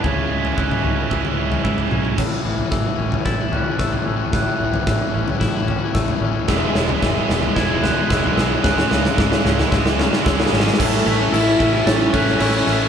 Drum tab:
CC |--------------------------------|x-------------------------------|--------------------------------|--------------------------------|
SD |--------------------------------|o-------o-------o-------o-------|o-------o-------o-------o-------|o---o---o---o---o---o---o---o---|
T2 |----------o-o---------------o-o-|--------o-------o---------------|--------o-------o---------------|--------o-------o---------------|
FT |o-----o---o-------o---o---o-----|o-----o-------o-----o-----o-----|o-----o-------o-----o-----o-----|o-----o-------o-----o-----o-----|
BD |o-------o-------o-------o-------|o-------o-------o-------o-------|o-------o-------o-------o-------|o-------o-------o-------o-------|

CC |--------------------------------|x---x---x---x---x---x---x---x---|
SD |o-o-o-o-o-o-o-o-o-o-o-o-o-oooooo|----------------o-----o---------|
T2 |--o-----o---o---o---------------|--------------------------------|
FT |o-----o-------o-----o-----o-----|--------------------------------|
BD |o-------o-------o-------o-------|o-----------o-------o-----------|